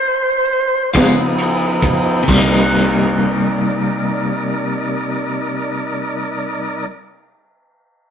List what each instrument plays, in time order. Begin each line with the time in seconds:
Already playing: tonewheel organ C5
0.94 fingered electric bass C#3, tonewheel organ F3 B3 D#4, clean electric guitar G#3 B3 F4, kick, snare, ride
1.38 ride
1.82 kick, ride
2.23 clean electric guitar C3
2.28 fingered electric bass C2, clean electric guitar G3, tonewheel organ D#4 A#4 D5, kick, crash
2.34 clean electric guitar A#3 D#4